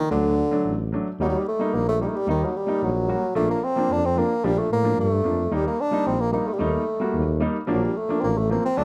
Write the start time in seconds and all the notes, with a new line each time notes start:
Already playing: D#3
0.11 D2 D3 F#3 A3 D4
0.51 F#3 A3 D4
0.65 A1
0.92 F#3 A3 D4
1.19 D#2 F#3 G3 A#3 D#4
1.24 G3
1.29 F#3
1.36 G3
1.48 A3
1.59 G3 A#3 D#4
1.74 A#1 A#3
1.88 A3
2.00 G3 A#3 D#4
2.08 A3
2.16 G3
2.27 D#2 D#3 G3 A#3 D#4
2.44 F#3
2.57 G3
2.67 G3 A#3 D#4
2.82 A#1 F#3
3.08 G3 A#3 F#4
3.35 A#1 F3 A3 A#3 D4
3.50 A#3
3.64 C4
3.76 F3 A#3 D4
3.90 F2 D4
4.05 C4
4.16 F3 A#3 D4
4.44 A#1 F3 G3 A#3 D4
4.59 A3
4.71 A2 A#3
4.83 F3 A#3 D4
4.98 G2 A3
5.24 F2 F3 A#3 D4
5.51 D#2 G3 A#3 D#4
5.67 A#3
5.80 D4
5.91 G3 A#3 D#4
6.06 A#1 C4
6.21 A#3
6.32 G3 A#3 D#4
6.47 A3
6.53 G3
6.59 D#2 G3 A3 A#3 D#4
7.00 G3 A#3 F#4
7.14 D#2
7.40 G3 A#3 D#4
7.66 A#1 F3 F#3 G3 A#3 D4
7.85 G3
7.97 A3
8.09 F3 A#3 D4
8.21 A1 A#3 C4
8.38 A3
8.49 F3 A#3 C4
8.65 C4
8.77 D2 F#3 A3 D4